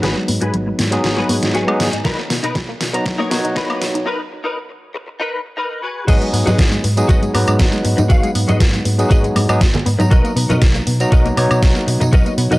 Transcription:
Already playing: F#3 G#3 B3 D#4 B4
0.02 G#1 F#3 F#4 G#4 B4, snare, closed hi-hat
0.17 G#3
0.28 G#2 B3, muted clean electric guitar stroke, open hi-hat
0.41 G#2 D#4 F#4 G#4 B4, closed hi-hat
0.54 G#1 F#3, closed hi-hat
0.66 G#3, muted clean electric guitar stroke
0.79 G#2 B3, snare, open hi-hat
0.91 F#3 G#3 B3 D#4 G#4, muted clean electric guitar stroke, closed hi-hat
1.04 G#1 F#3, muted clean electric guitar stroke, snare, closed hi-hat
1.17 G#3 F#4 G#4 B4
1.29 G#2 B3, open hi-hat
1.42 G#2 D#4, snare, closed hi-hat
1.54 F#3 F#4 G#4 B4 G#5, closed hi-hat
1.67 F#3 G#3 B3 D#4 G#4, high woodblock
1.79 G#2 B3, snare, open hi-hat
1.92 G#2 D#4, closed hi-hat
2.04 B1 F#3 D#4 A#4 B4, kick, snare, closed hi-hat
2.19 A#3
2.30 B2 B3, muted clean electric guitar stroke, snare, open hi-hat
2.43 B2 D#4 A#4 B4, closed hi-hat
2.55 F#3, kick, snare, closed hi-hat
2.68 A#3, muted clean electric guitar stroke
2.80 B2 B3, snare, open hi-hat
2.93 F#3 B3 D#4 A#5, muted clean electric guitar stroke, closed hi-hat
3.05 B1 F#3, muted clean electric guitar stroke, kick, snare, closed hi-hat
3.18 A#3 D#4 A#4 C#5
3.30 B2 F#3 B3 D#4 C#5, snare, open hi-hat
3.44 B2 D#4, closed hi-hat
3.55 F#3 D#4 A#4 B4, kick, snare, closed hi-hat
3.70 A#3, high woodblock
3.81 B2 B3, snare, open hi-hat
3.94 B2 D#4, closed hi-hat
4.06 D#4 A#4 B4
4.31 muted clean electric guitar stroke
4.44 D#4 A#4 B4
4.69 muted clean electric guitar stroke
4.95 muted clean electric guitar stroke
5.07 muted clean electric guitar stroke
5.20 D#4 A#4 B4
5.57 D#4 A#4 B4
5.82 F#4 G#4 B4
6.07 G#1 F#3 G#3 B3 D#4 F#4 G#4 B4 D#5, kick, closed hi-hat, tambourine, crash
6.21 G#3, closed hi-hat, tambourine
6.33 G#2 B3, open hi-hat
6.46 G#2 D#4 F#4 G#4 B4 D#5, closed hi-hat, tambourine, high conga
6.59 G#1 F#3, kick, snare, closed hi-hat, tambourine
6.71 G#3, muted clean electric guitar stroke, closed hi-hat, tambourine
6.84 G#2 B3, open hi-hat
6.97 F#3 G#3 B3 D#4 G#4, closed hi-hat, tambourine
7.08 G#1 F#3 F#4 G#4 B4 D#5, kick, closed hi-hat, tambourine
7.23 G#3, closed hi-hat, tambourine
7.34 G#2 F#3 G#3 B3 D#4 B4, muted clean electric guitar stroke, open hi-hat, high woodblock
7.47 G#2 D#4, closed hi-hat, tambourine, high woodblock
7.59 G#1 F#3, kick, snare, closed hi-hat, tambourine
7.73 G#3, closed hi-hat, tambourine
7.84 G#2 B3, muted clean electric guitar stroke, open hi-hat
7.97 G#2 D#4, muted clean electric guitar stroke, closed hi-hat, tambourine, high conga
8.09 G#1 F#3 F#4 G#4 B4 F5, kick, closed hi-hat, tambourine
8.23 G#3, closed hi-hat, tambourine
8.35 G#2 B3, open hi-hat
8.48 G#2 D#4 F#4 G#4 B4 D#5, closed hi-hat, tambourine, high conga
8.60 G#1 F#3, kick, snare, closed hi-hat, tambourine
8.73 G#3, muted clean electric guitar stroke, closed hi-hat, tambourine
8.85 G#2 B3, open hi-hat
8.99 F#3 G#3 B3 D#4 G#4, closed hi-hat, tambourine
9.10 G#1 F#3 F#4 G#4 B4 D#5, kick, closed hi-hat, tambourine
9.24 G#3, closed hi-hat, tambourine
9.35 G#2 B3, muted clean electric guitar stroke, open hi-hat, high conga, high woodblock
9.49 G#2 F#3 G#3 B3 D#4 G#4, closed hi-hat, tambourine, high woodblock
9.61 G#1 F#3, kick, snare, closed hi-hat, tambourine
9.74 G#3, closed hi-hat, tambourine, low conga
9.86 G#2 B3, muted clean electric guitar stroke, open hi-hat
9.98 G#2 F#3 B3 D#4 A#5, muted clean electric guitar stroke, closed hi-hat, tambourine, high conga
10.11 B1 F#3 F#4 A#4 B4 D#5, kick, closed hi-hat, tambourine
10.24 A#3, closed hi-hat, tambourine
10.36 B2 B3, open hi-hat
10.49 B2 D#4 F#4 A#4 B4 D#5, closed hi-hat, tambourine, high conga
10.62 B1 F#3, kick, snare, closed hi-hat, tambourine
10.75 A#3, muted clean electric guitar stroke, closed hi-hat, tambourine
10.87 B2 B3, open hi-hat
11.00 F#3 B3 D#4 A#5, closed hi-hat, tambourine
11.12 B1 F#3 F#4 A#4 B4 D#5, kick, closed hi-hat, tambourine
11.25 A#3, closed hi-hat, tambourine
11.36 B2 F#3 B3 D#4 C#5, muted clean electric guitar stroke, open hi-hat, high woodblock
11.51 B2 D#4, closed hi-hat, tambourine, high woodblock
11.62 B1 F#3, kick, snare, closed hi-hat, tambourine
11.76 A#3, closed hi-hat, tambourine
11.87 B2 B3, muted clean electric guitar stroke, open hi-hat
12.00 B2 D#4, muted clean electric guitar stroke, closed hi-hat, tambourine, high conga
12.13 B1 F#3 F#4 A#4 B4 D#5, kick, closed hi-hat, tambourine
12.26 A#3, closed hi-hat, tambourine
12.38 B2 B3, open hi-hat
12.51 B2 D#4 F#4 A#4 B4 D#5, closed hi-hat, tambourine, high conga

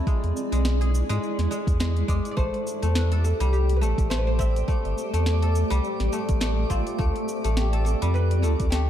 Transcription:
Already playing: G3 A3 E4 A4 D5
0.07 G#3 E4, kick, shaker
0.23 E2, open hi-hat
0.37 shaker
0.52 B1 G#3, open hi-hat, shaker
0.65 snare, shaker
0.81 G#4, open hi-hat
0.94 shaker
1.09 G#2 G#3, open hi-hat, shaker
1.23 shaker
1.38 E2, snare, open hi-hat
1.51 G#3, shaker
1.67 E2, kick, open hi-hat, shaker
1.80 G#3, snare, shaker
1.97 open hi-hat
2.08 E2 G#3 D5, kick, shaker
2.25 open hi-hat, shaker
2.31 D5
2.37 A1 A3 G4 C5 D5, kick, shaker
2.54 open hi-hat
2.67 shaker
2.82 E2 A3, open hi-hat, shaker
2.95 B4, snare, shaker
3.12 A4, open hi-hat
3.24 A4, shaker
3.40 C2 G3, open hi-hat, shaker
3.53 G4, shaker
3.69 open hi-hat
3.76 B4
3.81 A1 A3 A4, shaker
3.98 A1, kick, open hi-hat, shaker
4.10 A3 C5, snare, shaker
4.18 B4
4.27 C5
4.39 C4 E5, kick, shaker
4.56 open hi-hat, shaker
4.68 A3, kick, shaker
4.85 G1, open hi-hat
4.98 shaker
5.13 E2 A3, open hi-hat, shaker
5.26 snare, shaker
5.42 A4, open hi-hat
5.55 shaker
5.70 C2 G3, open hi-hat, shaker
5.84 shaker
6.00 A1, snare, open hi-hat
6.13 A3, shaker
6.29 A1, kick, open hi-hat, shaker
6.40 A3, snare, shaker
6.70 A1 C4 F4, kick, shaker
6.87 open hi-hat, shaker
6.98 D2 A3 C4 F4 D5, kick, shaker
7.16 open hi-hat
7.28 shaker
7.44 A1 A3, open hi-hat, shaker
7.57 G4, snare, shaker
7.73 A4, open hi-hat
7.85 A4, shaker
8.02 F2 G3, open hi-hat, shaker
8.14 B4, shaker
8.31 open hi-hat
8.42 D2 A3 A4, shaker
8.60 D2, kick, open hi-hat, shaker
8.70 A3 G4, snare, shaker

